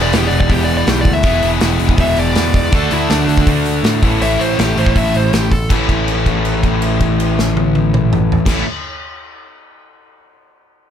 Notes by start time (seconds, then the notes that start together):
Already playing: E1 E2 B2 E3 G#3 B3 E4 G#4
0.02 D5
0.13 E1 G4, snare, open hi-hat
0.27 D5
0.31 E1, open hi-hat
0.40 D5, kick
0.49 E1 E2 B2 E3 G4, kick, open hi-hat
0.64 D5
0.69 open hi-hat
0.77 D5
0.87 B1 G4, snare, open hi-hat
1.01 D5
1.05 D2, kick, open hi-hat
1.13 E5
1.22 E1 E2 B2 E3 G#3 B3 E4 G#4, kick, open hi-hat
1.43 E1, open hi-hat
1.61 E1, snare, open hi-hat
1.80 E1, open hi-hat
1.89 kick
1.97 E1 E2 B2 E5, kick, open hi-hat
2.01 E3
2.16 E1 D5, open hi-hat
2.35 E2, snare, open hi-hat
2.54 D5, kick, open hi-hat
2.71 D2 D3 A3 D4 F#4 A4, kick, open hi-hat
2.75 A4
2.91 D2 E4, open hi-hat
3.10 D2 D4, snare, open hi-hat
3.28 D2, open hi-hat
3.37 kick
3.45 D2 D3 A3 D4, kick, open hi-hat
3.66 open hi-hat
3.83 A2, snare, open hi-hat
4.02 A1 A2 E3 A3 C#4 E4 A4, kick, open hi-hat
4.06 A3
4.21 A1 E5, open hi-hat
4.40 A1 C5, open hi-hat
4.59 A1 G4, snare, open hi-hat
4.76 A1 A2 E3 A3 C5, open hi-hat
4.86 kick
4.96 A1 E5, kick, open hi-hat
5.15 A1 C5, open hi-hat
5.33 A1 G4, snare, open hi-hat
5.51 A4, kick, open hi-hat
5.69 A1 A2 E3 A3 C#4, kick, crash
5.73 E4
5.89 kick, crash
6.08 crash
6.26 kick, crash
6.45 crash
6.63 kick, crash
6.82 crash
7.00 kick, crash
7.20 crash
7.39 snare
7.57 high tom
7.75 high tom
7.94 mid tom
8.13 mid tom
8.32 floor tom
8.45 A1 A2 E3 A3 C#4, kick, snare, crash
8.50 A3 E4